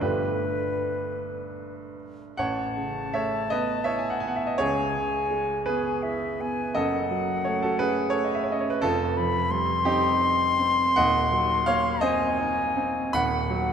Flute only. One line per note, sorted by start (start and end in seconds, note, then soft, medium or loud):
0.00 1.74 B4 medium
2.38 4.56 A5 medium
4.60 5.64 G#5 medium
5.65 6.04 G#5 medium
6.03 6.42 E5 medium
6.41 6.77 G#5 medium
6.75 8.56 F#5 medium
8.83 9.19 A5 medium
9.17 9.53 B5 medium
9.51 12.05 C6 loud
12.03 13.18 G#5 loud
13.16 13.73 F#5 medium